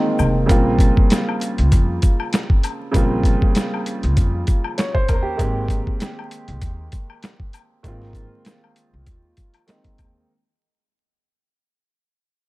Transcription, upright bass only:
0.19 0.44 F1 medium
0.50 0.89 A#1 loud
1.59 1.70 C#2 loud
1.72 1.98 F2 medium
2.94 3.34 A#1 loud
4.04 4.15 C#2 loud
4.17 4.42 F2 loud
5.09 5.34 D#2 medium
5.39 5.78 G#1 loud
6.48 6.60 C2 medium
6.62 6.87 D#2 loud
7.84 8.23 G#1 loud
8.94 9.05 C2 medium
9.07 9.32 D#2 loud
9.99 10.24 D#2 medium

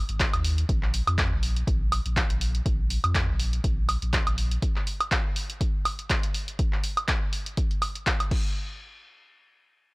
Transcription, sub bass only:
0.09 0.26 G#1 medium
0.33 0.64 D#2 medium
0.69 1.02 A#1 loud
1.07 1.33 F2 medium
1.32 1.63 A#1 loud
1.67 2.00 A#1 loud
2.05 2.23 A#1 medium
2.30 2.61 A#1 loud
2.66 2.98 A#1 loud
3.04 3.30 F2 medium
3.28 3.59 A#1 medium
3.64 3.97 A#1 loud
4.02 4.20 A#1 medium
4.27 4.58 A#1 loud

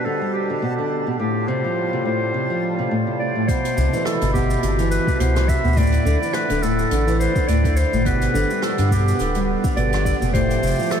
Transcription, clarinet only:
0.05 0.33 A4 medium
0.33 0.87 G4 medium
1.19 1.49 G4 medium
1.48 2.05 C5 loud
2.06 2.87 C5 medium
3.19 3.50 D5 medium
3.48 4.07 C5 loud
4.05 4.33 A4 medium
4.33 4.87 G4 medium
4.91 5.21 B4 loud
5.19 5.50 C5 loud
5.48 5.79 E5 loud
5.77 6.35 D5 loud
6.34 6.64 B4 loud
6.62 7.19 A4 loud
7.19 7.49 C5 loud
7.48 7.78 D5 loud
7.77 8.07 C5 medium
8.05 8.64 B4 loud
8.63 8.91 A4 medium
8.92 9.44 G4 medium
9.76 10.03 D5 loud
10.05 10.18 D5 loud
10.33 10.92 C5 loud
10.91 11.00 A4 loud

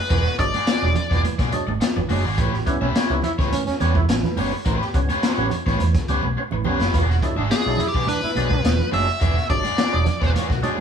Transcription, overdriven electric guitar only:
0.10 0.26 F#4 medium
0.10 0.25 G#4 medium
0.10 0.24 D5 loud
0.25 muted overdriven electric guitar stroke medium
0.39 muted overdriven electric guitar stroke soft
0.54 0.66 F#4 medium
0.54 0.66 G#4 medium
0.54 0.65 D5 medium
0.67 0.83 F#4 medium
0.67 0.84 G#4 medium
0.67 0.84 D5 loud
0.95 muted overdriven electric guitar stroke soft
1.10 1.23 F#4 soft
1.10 1.22 G#4 medium
1.10 1.22 D5 medium
1.24 muted overdriven electric guitar stroke soft
1.39 1.51 F#4 medium
1.39 1.52 G#4 medium
1.39 1.52 D5 medium
1.53 muted overdriven electric guitar stroke soft
1.67 muted overdriven electric guitar stroke soft
1.81 muted overdriven electric guitar stroke soft
1.96 muted overdriven electric guitar stroke soft
2.09 2.22 F#4 medium
2.09 2.23 G#4 medium
2.09 2.23 D5 medium
2.25 2.37 F#4 medium
2.25 2.37 G#4 medium
2.25 2.36 D5 medium
2.38 2.54 G4 medium
2.38 2.53 B4 loud
2.38 2.52 C#5 loud
2.53 muted overdriven electric guitar stroke medium
2.66 muted overdriven electric guitar stroke soft
2.81 2.93 G4 soft
2.81 2.93 B4 medium
2.81 2.93 E5 medium
2.94 3.11 G4 medium
2.94 3.12 B4 medium
2.94 3.12 C#5 medium
3.24 muted overdriven electric guitar stroke soft
3.38 3.51 G4 soft
3.38 3.51 B4 soft
3.38 3.50 C#5 medium
3.52 muted overdriven electric guitar stroke soft
3.81 3.93 G4 medium
3.81 3.94 B4 medium
3.81 3.94 C#5 medium
3.96 muted overdriven electric guitar stroke soft
4.09 muted overdriven electric guitar stroke soft
4.37 4.50 G4 medium
4.37 4.51 B4 medium
4.37 4.51 C#5 medium
4.52 muted overdriven electric guitar stroke soft
4.65 4.86 G4 medium
4.65 4.81 B4 loud
4.65 4.80 C#5 medium
4.81 muted overdriven electric guitar stroke soft
4.94 muted overdriven electric guitar stroke soft
5.09 5.21 G4 medium
5.09 5.21 B4 medium
5.09 5.21 C#5 medium
5.22 5.43 G4 medium
5.22 5.43 B4 medium
5.22 5.44 C#5 loud
5.51 muted overdriven electric guitar stroke soft
5.66 5.79 G4 medium
5.66 5.78 B4 medium
5.66 5.78 C#5 medium
5.80 muted overdriven electric guitar stroke soft
6.09 6.21 G4 medium
6.09 6.22 B4 medium
6.09 6.22 C#5 medium
6.24 muted overdriven electric guitar stroke soft
6.37 muted overdriven electric guitar stroke soft
6.52 muted overdriven electric guitar stroke soft
6.65 6.78 G4 medium
6.65 6.78 B4 medium
6.65 6.79 C#5 medium
6.80 6.92 G4 medium
6.80 6.92 B4 medium
6.80 6.91 C#5 medium
6.94 7.14 F#4 medium
6.94 7.09 G#4 medium
6.94 7.09 D5 medium
7.10 muted overdriven electric guitar stroke soft
7.22 muted overdriven electric guitar stroke soft
7.37 7.49 F#4 soft
7.37 7.49 G#4 soft
7.37 7.48 E5 medium
7.50 7.67 F#4 medium
7.50 7.67 G#4 medium
7.50 7.67 D5 medium
7.78 muted overdriven electric guitar stroke soft
7.94 8.06 F#4 soft
7.94 8.06 G#4 medium
7.94 8.06 D5 medium
8.08 muted overdriven electric guitar stroke soft
8.36 8.49 F#4 medium
8.36 8.49 G#4 medium
8.36 8.49 D5 medium
8.51 muted overdriven electric guitar stroke soft
8.64 muted overdriven electric guitar stroke soft
8.92 9.05 F#4 medium
8.92 9.05 G#4 medium
8.92 9.06 D5 medium
9.07 muted overdriven electric guitar stroke soft
9.20 9.37 F#4 medium
9.20 9.36 G#4 medium
9.20 9.35 D5 medium
9.36 muted overdriven electric guitar stroke soft
9.49 muted overdriven electric guitar stroke soft
9.63 9.76 F#4 medium
9.63 9.76 G#4 medium
9.63 9.75 D5 medium
9.77 9.94 F#4 medium
9.77 9.94 G#4 medium
9.77 9.95 D5 medium
10.06 muted overdriven electric guitar stroke soft
10.20 10.32 F#4 soft
10.20 10.33 G#4 medium
10.20 10.32 D5 medium
10.34 10.55 F#4 medium
10.34 10.49 G#4 medium
10.34 10.48 D5 loud
10.49 muted overdriven electric guitar stroke soft
10.62 10.76 F#4 medium
10.62 10.76 G#4 medium
10.62 10.76 D5 medium

